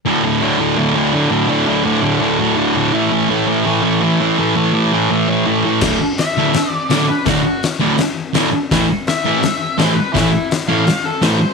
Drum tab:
CC |--------|--------|--------|--------|
HH |--------|--------|--------|--------|
SD |--------|--------|--------|--------|
BD |--------|--------|--------|--------|

CC |x-------|--------|--------|--------|
HH |--o-o-o-|o-o-o-o-|o-o-o-o-|o-o-o-o-|
SD |o-o-o-o-|o-o-o-o-|o-o-o-o-|o-o-o-o-|
BD |o-------|o-------|o-------|o-------|